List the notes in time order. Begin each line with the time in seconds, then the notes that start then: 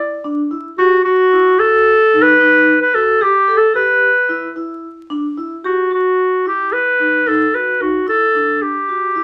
Already playing: D5
0.24 D4
0.51 E4
0.78 F#4 G4
1.05 F#4
1.33 E4
1.59 F#4 A4
2.14 D#4
2.22 B4
2.40 D#4
2.81 B4
2.94 F#4 A4
3.21 G4
3.48 A4
3.57 A4
3.74 G4 B4
4.29 E4
4.56 E4
5.10 D4
5.38 E4
5.64 F#4 G4
5.91 F#4
6.46 E4 G4
6.73 B4
6.99 D#4
7.26 D#4 A4
7.53 F#4 B4
7.80 D#4 F#4
8.07 E4 A4
8.35 D4
8.62 G4
8.89 F#4
9.15 E4